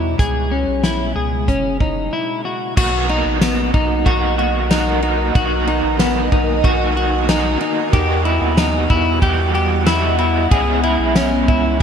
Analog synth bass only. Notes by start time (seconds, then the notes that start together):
Already playing: E2
0.19 C#2
0.68 B1
1.16 C#2
1.48 F#1
2.77 B1
3.26 A#1
3.74 B1
4.06 B1
5.35 B1
5.84 A#1
6.32 B1
6.64 B1
7.93 E2
8.41 D#2
8.90 E2
9.22 E2
10.51 C#2
10.99 B1
11.48 C#2